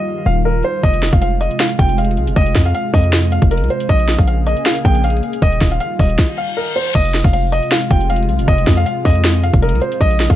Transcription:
Already playing: analog synth pad D#3 G3 F4, grand piano D#5
0.26 808-style bass D#1, grand piano F5
0.45 grand piano A#4
0.64 grand piano C5
0.83 808-style bass F1, analog synth pad C3 G#3, grand piano D#5, kick, closed hi-hat
0.94 closed hi-hat
1.02 snare
1.13 808-style bass F1, grand piano F5, kick, closed hi-hat
1.22 grand piano F5, closed hi-hat
1.41 grand piano D#5, closed hi-hat
1.51 closed hi-hat
1.60 grand piano F5, snare, closed hi-hat
1.70 closed hi-hat
1.79 808-style bass F1, grand piano G5, kick, closed hi-hat
1.89 closed hi-hat
1.98 grand piano F5, closed hi-hat
2.05 closed hi-hat
2.11 closed hi-hat
2.17 808-style bass C2, closed hi-hat
2.27 808-style bass F1, closed hi-hat
2.36 808-style bass F1, grand piano D#5, kick, closed hi-hat
2.46 closed hi-hat
2.55 808-style bass F2, kick, snare
2.65 grand piano F5, closed hi-hat
2.75 grand piano F5, closed hi-hat
2.94 808-style bass F2, grand piano D#5, kick, open hi-hat
3.04 closed hi-hat
3.13 snare, closed hi-hat
3.23 closed hi-hat
3.32 grand piano F5, closed hi-hat
3.42 808-style bass F1, kick, closed hi-hat
3.51 grand piano A#4, closed hi-hat
3.57 808-style bass C2, closed hi-hat
3.64 closed hi-hat
3.70 grand piano C5, closed hi-hat
3.80 closed hi-hat
3.89 808-style bass A#1, analog synth pad C#3 A#3 G#4, grand piano D#5, kick, closed hi-hat
3.99 closed hi-hat
4.08 snare
4.18 808-style bass A#1, grand piano F5, kick, closed hi-hat
4.27 grand piano F5, closed hi-hat
4.47 grand piano D#5, closed hi-hat
4.57 closed hi-hat
4.66 grand piano F5, snare, closed hi-hat
4.76 closed hi-hat
4.85 808-style bass A#1, grand piano G5, kick, closed hi-hat
4.95 closed hi-hat
5.04 grand piano F5, closed hi-hat
5.10 closed hi-hat
5.17 closed hi-hat
5.23 closed hi-hat
5.33 closed hi-hat
5.42 808-style bass D#1, analog synth pad D#3 G3 F4, grand piano D#5, kick, closed hi-hat
5.52 closed hi-hat
5.61 808-style bass D#1, kick, snare
5.71 grand piano F5, closed hi-hat
5.80 grand piano F5, closed hi-hat
5.99 808-style bass D#1, grand piano D#5, kick, open hi-hat
6.10 closed hi-hat
6.19 kick, snare, reverse cymbal
6.38 grand piano F5
6.57 grand piano A#4
6.76 grand piano C5
6.95 808-style bass F1, analog synth pad C3 G#3 F4, grand piano D#5, kick, closed hi-hat, crash
7.05 closed hi-hat
7.14 snare
7.24 808-style bass F1, grand piano F5, kick, closed hi-hat
7.33 grand piano F5, closed hi-hat
7.52 grand piano D#5, closed hi-hat
7.62 closed hi-hat
7.71 grand piano F5, snare, closed hi-hat
7.82 closed hi-hat
7.91 808-style bass F1, grand piano G5, kick, closed hi-hat
8.01 closed hi-hat
8.10 grand piano F5, closed hi-hat
8.16 closed hi-hat
8.23 closed hi-hat
8.29 808-style bass C2, closed hi-hat
8.39 808-style bass F1, closed hi-hat
8.48 808-style bass F1, grand piano D#5, kick, closed hi-hat
8.58 closed hi-hat
8.67 808-style bass F2, kick, snare
8.77 grand piano F5, closed hi-hat
8.86 grand piano F5, closed hi-hat
9.05 808-style bass F2, grand piano D#5, kick, open hi-hat
9.15 closed hi-hat
9.24 snare, closed hi-hat
9.34 closed hi-hat
9.43 grand piano F5, closed hi-hat
9.54 808-style bass F1, kick, closed hi-hat
9.62 grand piano A#4, closed hi-hat
9.69 808-style bass C2, closed hi-hat
9.75 closed hi-hat
9.82 grand piano C5, closed hi-hat
9.92 closed hi-hat
10.01 808-style bass A#1, analog synth pad C#3 A#3 G#4, grand piano D#5, kick, closed hi-hat
10.11 closed hi-hat
10.20 snare
10.30 808-style bass A#1, grand piano F5, kick, closed hi-hat

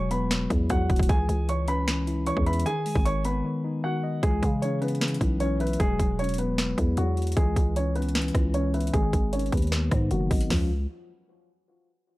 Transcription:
Already playing: 808-style bass E1, tine electric piano F#3 G#3
0.11 tine electric piano B3, grand piano B4 B5, closed hi-hat
0.31 tine electric piano F#3, finger snap, snare, closed hi-hat
0.50 808-style bass E2, tine electric piano E4, kick, closed hi-hat
0.70 808-style bass E2, tine electric piano F#3, grand piano F#4 F#5, kick, closed hi-hat
0.90 808-style bass E1, tine electric piano F#4, kick, closed hi-hat
0.96 808-style bass E1, kick, closed hi-hat
1.03 closed hi-hat
1.09 808-style bass C#2, tine electric piano E3, grand piano G#4 G#5, kick, closed hi-hat
1.29 808-style bass C#2, tine electric piano G#3, closed hi-hat
1.48 tine electric piano E3, grand piano C#5 C#6, closed hi-hat
1.68 tine electric piano C#4, grand piano B4 B5, closed hi-hat
1.88 tine electric piano E3, finger snap, snare, closed hi-hat
2.07 tine electric piano E4, closed hi-hat
2.26 tine electric piano E3, grand piano C#5 C#6, closed hi-hat
2.37 808-style bass E2, kick
2.46 grand piano B4 B5, tine electric piano E5, closed hi-hat
2.53 closed hi-hat
2.60 closed hi-hat
2.66 tine electric piano D#3, grand piano G#4 G#5, closed hi-hat
2.86 tine electric piano G#3, open hi-hat
2.95 808-style bass G#1, kick
3.05 tine electric piano D#3, grand piano C#5 C#6, closed hi-hat
3.25 tine electric piano B3, grand piano B4 B5, closed hi-hat
3.44 tine electric piano D#3
3.64 tine electric piano D#4
3.84 tine electric piano D#3, grand piano F#4 F#5
4.04 tine electric piano D#5
4.23 808-style bass C#2, tine electric piano E3, grand piano G#3 G#4, kick, closed hi-hat
4.42 808-style bass C#3, tine electric piano G#3, kick, closed hi-hat
4.62 tine electric piano E3, grand piano C#4 C#5, closed hi-hat
4.81 grand piano B3 B4, tine electric piano C#4, closed hi-hat
4.88 closed hi-hat
4.95 closed hi-hat
5.01 tine electric piano E3, finger snap, snare, closed hi-hat
5.08 closed hi-hat
5.14 closed hi-hat
5.21 808-style bass B1, tine electric piano E4, kick, closed hi-hat
5.40 tine electric piano E3, grand piano C#4 C#5, closed hi-hat
5.60 grand piano B3 B4, tine electric piano E5, closed hi-hat
5.67 closed hi-hat
5.73 closed hi-hat
5.80 808-style bass E1, tine electric piano F#3, grand piano G#3 G#4, kick, closed hi-hat
5.99 808-style bass E1, tine electric piano G#3, kick, closed hi-hat
6.18 tine electric piano F#3, grand piano C#4 C#5, closed hi-hat
6.24 closed hi-hat
6.29 closed hi-hat
6.34 closed hi-hat
6.38 tine electric piano B3, grand piano B3 B4, closed hi-hat
6.58 tine electric piano F#3, finger snap, snare, closed hi-hat
6.78 808-style bass E2, tine electric piano E4, kick, closed hi-hat
6.97 808-style bass E2, tine electric piano F#3, grand piano F#3 F#4, closed hi-hat
7.17 tine electric piano F#4, closed hi-hat
7.22 closed hi-hat
7.27 closed hi-hat
7.32 closed hi-hat
7.37 808-style bass C#2, tine electric piano E3, grand piano G#3 G#4, kick, closed hi-hat
7.56 808-style bass C#2, tine electric piano G#3, kick, closed hi-hat
7.76 tine electric piano E3, grand piano C#4 C#5, closed hi-hat
7.96 grand piano B3 B4, tine electric piano C#4, closed hi-hat
8.02 closed hi-hat
8.09 closed hi-hat
8.15 tine electric piano E3, finger snap, snare, closed hi-hat
8.22 closed hi-hat
8.28 closed hi-hat
8.35 808-style bass C#2, tine electric piano E4, kick, cross-stick, closed hi-hat
8.54 tine electric piano E3, grand piano C#4 C#5, closed hi-hat
8.74 grand piano B3 B4, tine electric piano E5, closed hi-hat
8.81 closed hi-hat
8.87 closed hi-hat
8.93 808-style bass G#1, tine electric piano D#3, grand piano G#3 G#4, kick, closed hi-hat
9.13 808-style bass G#1, tine electric piano G#3, kick, closed hi-hat
9.32 tine electric piano D#3, grand piano C#4 C#5, closed hi-hat
9.39 closed hi-hat
9.46 closed hi-hat
9.52 808-style bass D#2, tine electric piano B3, grand piano B3 B4, kick, closed hi-hat
9.57 closed hi-hat
9.62 closed hi-hat
9.67 closed hi-hat
9.72 tine electric piano D#3, finger snap, cross-stick, snare, closed hi-hat
9.91 808-style bass G#2, tine electric piano D#4, kick, cross-stick, closed hi-hat
10.11 808-style bass F#1, tine electric piano D#3, grand piano F#3 F#4, closed hi-hat
10.31 808-style bass G#1, tine electric piano D#5, kick, closed hi-hat, open hi-hat
10.41 closed hi-hat
10.50 808-style bass C#2, tine electric piano F3 G#3 C#4 F4, grand piano F3, snare, floor tom, open hi-hat

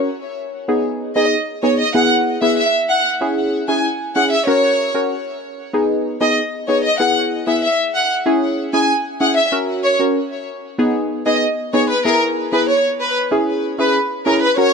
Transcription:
0.68 synth stab B3 D#4 G#4
1.16 synth stab B3 D#4 G#4, violin section D#5
1.63 synth stab B3 D#4 G#4, violin section C#5
1.79 violin section D#5
1.94 synth stab B3 E4 G#4, violin section F#5
2.42 synth stab B3 E4 G#4, violin section E5
2.58 violin section E5
2.90 violin section F#5
3.21 synth stab C#4 E4 G#4
3.68 synth stab C#4 E4 G#4, violin section G#5
4.16 synth stab C#4 E4 G#4, violin section F#5
4.31 violin section E5
4.47 synth stab C#4 F#4 A#4, violin section C#5
4.94 synth stab C#4 F#4 A#4
5.73 synth stab B3 D#4 G#4
6.21 synth stab B3 D#4 G#4, violin section D#5
6.68 synth stab B3 D#4 G#4, violin section C#5
6.84 violin section D#5
7.00 synth stab B3 E4 G#4, violin section F#5
7.47 synth stab B3 E4 G#4, violin section E5
7.63 violin section E5
7.95 violin section F#5
8.26 synth stab C#4 E4 G#4
8.73 synth stab C#4 E4 G#4, violin section G#5
9.20 synth stab C#4 E4 G#4, violin section F#5
9.37 violin section E5
9.52 synth stab C#4 F#4 A#4
9.84 violin section C#5
9.99 synth stab C#4 F#4 A#4
10.78 synth stab B3 D#4 G#4
11.26 synth stab B3 D#4 G#4, violin section D#5
11.73 synth stab B3 D#4 G#4, violin section C#5
11.89 violin section B4
12.05 synth stab B3 E4 G#4, violin section A#4
12.52 synth stab B3 E4 G#4, violin section B4
12.69 violin section C#5
13.00 violin section B4
13.31 synth stab C#4 E4 G#4
13.78 synth stab C#4 E4 G#4, violin section B4
14.26 synth stab C#4 E4 G#4, violin section A#4
14.42 violin section B4
14.57 synth stab C#4 F#4 A#4, violin section C#5

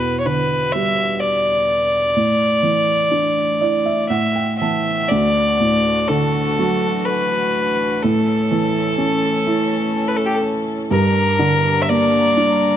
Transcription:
Already playing: felt piano E2 B2, fiddle B4
0.20 fiddle C#5
0.26 felt piano D3, fiddle B4
0.72 felt piano G3, fiddle E5
1.20 fiddle D5
2.17 felt piano A2
2.63 felt piano E3
3.11 felt piano D4
3.61 felt piano E4 D5
3.86 felt piano E5
4.09 felt piano A2 F#5, fiddle E5
4.36 felt piano G5
4.59 felt piano E3 A5, fiddle E5
5.09 felt piano D2, string section E3 D4 F#4, fiddle D5
5.60 felt piano A2
6.08 felt piano D3, fiddle A4
6.59 felt piano F#3
7.05 fiddle B4
8.02 felt piano A2, string section C#4 A4, fiddle A4
8.51 felt piano E3
8.98 felt piano C#4
9.47 felt piano E4
10.08 fiddle B4
10.17 fiddle A4
10.26 fiddle G4
10.35 fiddle A4
10.91 felt piano G2, string section G3 D4 A#4, fiddle A#4
11.39 felt piano D3
11.82 fiddle E5
11.89 felt piano A#3, fiddle D5
12.37 felt piano D4

